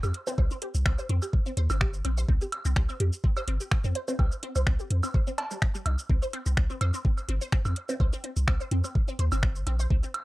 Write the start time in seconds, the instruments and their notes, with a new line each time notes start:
0.03 sub bass F2, synth arpeggio sound G4, high woodblock, shaker
0.14 closed hi-hat
0.27 synth arpeggio sound C4, low bongo, shaker
0.38 sub bass C2, synth arpeggio sound C5, kick, high woodblock
0.51 synth arpeggio sound C4, shaker
0.62 synth arpeggio sound G4, closed hi-hat
0.75 sub bass C2, closed hi-hat, shaker
0.86 sub bass C2, synth arpeggio sound C4, finger snap, kick, high woodblock
0.99 synth arpeggio sound C5, shaker
1.09 sub bass F2, synth arpeggio sound C4, closed hi-hat
1.22 synth arpeggio sound G4, high woodblock, shaker
1.33 kick
1.46 synth arpeggio sound C4, shaker
1.57 sub bass D#2, synth arpeggio sound C5, closed hi-hat
1.70 sub bass G1, synth arpeggio sound C4, high woodblock, shaker
1.81 synth arpeggio sound G4, finger snap, kick
1.94 shaker
2.05 sub bass A#1, synth arpeggio sound C4, closed hi-hat, high woodblock
2.18 synth arpeggio sound C5, shaker
2.29 sub bass C2, synth arpeggio sound C4, kick
2.41 synth arpeggio sound G4, shaker
2.52 closed hi-hat, high woodblock
2.65 sub bass C2, synth arpeggio sound C4, closed hi-hat, shaker
2.76 sub bass C2, synth arpeggio sound C5, finger snap, kick
2.89 synth arpeggio sound C4, high woodblock, shaker
3.00 sub bass F2, synth arpeggio sound G4, closed hi-hat
3.13 shaker
3.24 synth arpeggio sound C4, kick
3.37 synth arpeggio sound C5, high woodblock, shaker
3.48 sub bass G1, synth arpeggio sound C4, closed hi-hat
3.60 synth arpeggio sound G4, shaker
3.71 finger snap, kick, high woodblock
3.84 sub bass F2, synth arpeggio sound C4, shaker
3.95 synth arpeggio sound C5, closed hi-hat
4.08 synth arpeggio sound C4, low bongo, shaker
4.19 sub bass C2, synth arpeggio sound G4, kick, high woodblock
4.32 shaker
4.43 synth arpeggio sound C4, closed hi-hat
4.56 sub bass C2, synth arpeggio sound C5, closed hi-hat, high woodblock, shaker
4.67 sub bass C2, synth arpeggio sound C4, finger snap, kick
4.80 synth arpeggio sound G4, shaker
4.90 sub bass F2, closed hi-hat
5.03 synth arpeggio sound C4, high woodblock, shaker
5.14 synth arpeggio sound C5, kick
5.27 synth arpeggio sound C4, shaker
5.38 closed hi-hat, cowbell, high woodblock
5.51 synth arpeggio sound G3, shaker
5.62 finger snap, kick
5.75 synth arpeggio sound G3, shaker
5.86 sub bass C2, synth arpeggio sound D#4, closed hi-hat, high woodblock
5.99 shaker
6.09 sub bass C2, synth arpeggio sound C4, kick
6.22 synth arpeggio sound C5, shaker
6.33 synth arpeggio sound C4, closed hi-hat, high woodblock
6.46 sub bass C2, synth arpeggio sound C4, closed hi-hat, shaker
6.57 sub bass C2, finger snap, kick
6.70 synth arpeggio sound C4, shaker
6.81 sub bass F2, synth arpeggio sound C5, closed hi-hat, high woodblock
6.94 synth arpeggio sound C4, shaker
7.05 synth arpeggio sound C4, kick
7.18 high woodblock, shaker
7.29 sub bass G1, synth arpeggio sound C4, closed hi-hat
7.41 synth arpeggio sound C5, shaker
7.52 synth arpeggio sound C4, finger snap, kick
7.65 sub bass F2, synth arpeggio sound C4, high woodblock, shaker
7.76 closed hi-hat
7.89 synth arpeggio sound C4, low bongo, shaker
8.00 sub bass C2, synth arpeggio sound C5, kick, high woodblock
8.13 synth arpeggio sound C4, shaker
8.24 synth arpeggio sound C4, closed hi-hat
8.37 sub bass C2, closed hi-hat, shaker
8.48 sub bass C2, synth arpeggio sound C4, finger snap, kick, high woodblock
8.60 synth arpeggio sound C5, shaker
8.71 sub bass F2, synth arpeggio sound C4, closed hi-hat
8.84 synth arpeggio sound C4, high woodblock, shaker
8.95 kick
9.08 synth arpeggio sound C4, shaker
9.19 sub bass D#2, synth arpeggio sound C5, closed hi-hat
9.32 sub bass G1, synth arpeggio sound C4, high woodblock, shaker
9.43 synth arpeggio sound C4, finger snap, kick
9.56 shaker
9.67 sub bass A#1, synth arpeggio sound C4, closed hi-hat, high woodblock
9.79 synth arpeggio sound C5, shaker
9.90 sub bass C2, synth arpeggio sound C4, kick
10.03 synth arpeggio sound C4, shaker
10.14 closed hi-hat, high woodblock